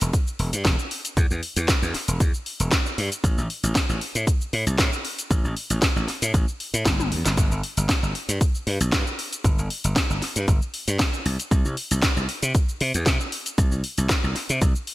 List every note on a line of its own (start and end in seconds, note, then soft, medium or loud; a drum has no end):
0.01 0.11 E1 medium
0.01 closed hi-hat medium
0.01 shaker medium
0.13 kick loud
0.13 closed hi-hat soft
0.13 shaker medium
0.27 shaker soft
0.39 0.50 E1 medium
0.39 open hi-hat medium
0.53 0.62 G2 medium
0.53 closed hi-hat medium
0.53 shaker medium
0.65 0.76 E1 medium
0.65 kick loud
0.65 snare loud
0.65 closed hi-hat soft
0.65 shaker medium
0.79 shaker soft
0.91 open hi-hat medium
1.05 closed hi-hat medium
1.05 shaker medium
1.17 1.28 E2 medium
1.17 kick loud
1.17 closed hi-hat soft
1.17 shaker medium
1.31 1.40 E2 medium
1.31 shaker soft
1.43 open hi-hat medium
1.56 1.66 E2 medium
1.56 closed hi-hat medium
1.56 shaker medium
1.68 kick loud
1.68 snare loud
1.68 closed hi-hat medium
1.68 shaker medium
1.82 1.92 E2 medium
1.82 shaker soft
1.94 muted slap bass stroke soft
1.94 snare soft
1.94 open hi-hat medium
2.08 2.18 E1 medium
2.08 closed hi-hat medium
2.08 shaker medium
2.20 2.31 E2 medium
2.20 kick loud
2.20 closed hi-hat soft
2.20 shaker medium
2.34 shaker soft
2.46 open hi-hat medium
2.60 2.69 E1 medium
2.60 closed hi-hat medium
2.60 shaker medium
2.71 kick loud
2.71 snare loud
2.71 closed hi-hat soft
2.71 shaker medium
2.86 shaker soft
2.98 3.09 G2 medium
2.98 open hi-hat medium
3.12 closed hi-hat medium
3.12 shaker medium
3.24 3.34 A1 medium
3.24 kick loud
3.24 closed hi-hat soft
3.24 shaker medium
3.38 3.47 A1 medium
3.38 shaker soft
3.50 open hi-hat medium
3.63 3.73 A1 medium
3.63 closed hi-hat medium
3.63 shaker medium
3.75 kick loud
3.75 snare loud
3.75 closed hi-hat medium
3.75 shaker medium
3.89 3.99 A1 medium
3.89 shaker soft
4.01 open hi-hat medium
4.15 4.25 A2 medium
4.15 closed hi-hat medium
4.15 shaker medium
4.27 kick loud
4.27 closed hi-hat medium
4.27 shaker medium
4.41 shaker soft
4.53 4.64 A2 medium
4.53 open hi-hat medium
4.67 4.76 C2 medium
4.67 closed hi-hat medium
4.67 shaker medium
4.78 4.90 A2 medium
4.78 kick medium
4.78 snare loud
4.78 closed hi-hat soft
4.78 shaker medium
4.93 shaker soft
5.05 open hi-hat medium
5.19 closed hi-hat medium
5.19 shaker medium
5.31 5.41 A1 loud
5.31 kick loud
5.31 closed hi-hat medium
5.31 shaker medium
5.44 5.54 A1 medium
5.44 shaker soft
5.57 open hi-hat loud
5.70 5.80 A1 medium
5.70 closed hi-hat medium
5.70 shaker medium
5.82 kick loud
5.82 snare loud
5.82 closed hi-hat medium
5.82 shaker medium
5.96 6.06 A1 medium
5.96 shaker soft
6.08 muted slap bass stroke soft
6.08 snare soft
6.08 open hi-hat medium
6.22 6.31 A2 medium
6.22 closed hi-hat medium
6.22 shaker medium
6.34 6.45 A1 medium
6.34 kick loud
6.34 closed hi-hat medium
6.34 shaker medium
6.48 shaker soft
6.60 open hi-hat medium
6.74 6.83 A2 medium
6.74 closed hi-hat medium
6.74 shaker medium
6.85 7.13 G1 medium
6.85 kick loud
6.85 snare loud
6.85 closed hi-hat soft
6.85 high tom medium
6.85 shaker medium
7.00 high tom medium
7.00 shaker soft
7.12 7.22 E2 medium
7.12 open hi-hat medium
7.26 7.35 G1 medium
7.26 snare medium
7.26 closed hi-hat medium
7.26 shaker medium
7.37 7.48 G1 medium
7.37 kick loud
7.37 closed hi-hat soft
7.37 shaker medium
7.51 7.61 G1 medium
7.51 shaker soft
7.63 open hi-hat loud
7.77 7.87 G1 medium
7.77 closed hi-hat medium
7.77 shaker medium
7.89 kick loud
7.89 snare loud
7.89 closed hi-hat medium
7.89 shaker medium
8.03 8.12 G1 medium
8.03 shaker soft
8.15 open hi-hat medium
8.29 8.38 G2 medium
8.29 closed hi-hat medium
8.29 shaker medium
8.41 kick loud
8.41 closed hi-hat medium
8.41 shaker medium
8.55 shaker soft
8.67 8.78 G2 medium
8.67 open hi-hat loud
8.81 8.90 B1 medium
8.81 closed hi-hat medium
8.81 shaker medium
8.92 9.03 G2 medium
8.92 kick loud
8.92 snare loud
8.92 closed hi-hat soft
8.92 shaker medium
9.07 shaker soft
9.19 open hi-hat medium
9.33 closed hi-hat medium
9.33 shaker medium
9.44 9.55 G1 medium
9.44 kick loud
9.44 closed hi-hat soft
9.44 shaker medium
9.58 9.68 G1 medium
9.58 shaker soft
9.70 open hi-hat loud
9.84 9.94 G1 medium
9.84 closed hi-hat medium
9.84 shaker medium
9.96 kick loud
9.96 snare loud
9.96 closed hi-hat medium
9.96 shaker medium
10.10 10.19 G1 medium
10.10 shaker soft
10.22 snare soft
10.22 open hi-hat medium
10.36 10.45 G2 medium
10.36 closed hi-hat medium
10.36 shaker medium
10.48 10.59 G1 medium
10.48 kick loud
10.48 closed hi-hat medium
10.48 shaker medium
10.62 shaker soft
10.74 open hi-hat loud
10.88 10.97 G2 medium
10.88 closed hi-hat medium
10.88 shaker medium
10.99 kick loud
10.99 snare loud
10.99 closed hi-hat medium
10.99 shaker soft
11.14 shaker soft
11.26 11.36 C2 loud
11.26 open hi-hat medium
11.40 closed hi-hat medium
11.40 shaker medium
11.51 11.62 C2 loud
11.51 kick loud
11.51 closed hi-hat soft
11.51 shaker soft
11.65 11.75 C2 medium
11.65 shaker soft
11.77 open hi-hat loud
11.91 12.00 C2 medium
11.91 closed hi-hat medium
11.91 shaker medium
12.02 kick loud
12.02 snare loud
12.02 closed hi-hat medium
12.02 shaker medium
12.17 12.26 C2 medium
12.17 shaker soft
12.29 open hi-hat medium
12.43 12.52 C3 medium
12.43 closed hi-hat medium
12.43 shaker medium
12.55 kick loud
12.55 closed hi-hat medium
12.55 shaker medium
12.69 shaker soft
12.81 12.91 C3 medium
12.81 open hi-hat loud
12.94 13.04 E2 medium
12.94 closed hi-hat medium
12.94 shaker medium
13.06 13.17 C3 medium
13.06 kick loud
13.06 snare loud
13.06 closed hi-hat soft
13.06 shaker medium
13.20 shaker soft
13.32 open hi-hat loud
13.46 closed hi-hat medium
13.46 shaker medium
13.58 13.69 C2 loud
13.58 kick loud
13.58 closed hi-hat soft
13.58 shaker medium
13.72 13.81 C2 medium
13.72 shaker soft
13.84 open hi-hat loud
13.98 14.07 C2 medium
13.98 closed hi-hat medium
13.98 shaker medium
14.09 kick loud
14.09 snare loud
14.09 closed hi-hat soft
14.09 shaker medium
14.24 14.33 C2 medium
14.24 shaker soft
14.35 muted slap bass stroke soft
14.35 snare soft
14.35 open hi-hat medium
14.49 14.59 C3 medium
14.49 closed hi-hat medium
14.49 shaker medium
14.62 14.72 C2 medium
14.62 kick loud
14.62 closed hi-hat soft
14.62 shaker medium
14.76 shaker soft
14.87 open hi-hat loud